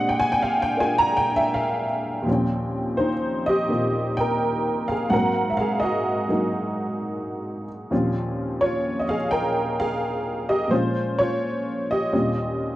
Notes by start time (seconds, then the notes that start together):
Already playing: A#2 G#3 C4 D4 G4 F#5
0.09 G5
0.20 G#5
0.32 G5
0.42 F5
0.62 G5
0.77 A#3 D4 F4 G#4 G#5
0.98 A#5
1.17 G5
1.36 E5
1.54 F5
2.22 D#2 A#2
2.26 F3 C4
2.31 C#4 G5
2.97 D#4 C5
3.46 G4 D#5
3.69 A#2 D#3 A#3 C4 F4
4.17 A#4 G5
4.88 G#4 F5
5.10 G#2 F#3 A#3 A#4 F#5
5.14 C4 F5
5.50 E5
5.57 G#4 F5
5.80 F#4 D#5
6.28 F#3 G#3 A#3 D#4
7.91 D#2 A#2 F3 C4 C#4 F4
8.61 F4 C#5
8.99 D#5
9.09 G#4 F5
9.31 A#4 G5
9.80 G#4 F5
10.49 G4 D#5
10.68 A#2 F3 G#3 C5
10.72 C#4 F4
11.19 F4 C#5
11.91 G4 D#5
12.12 D#2 A#2 G3 C4 C#4 F4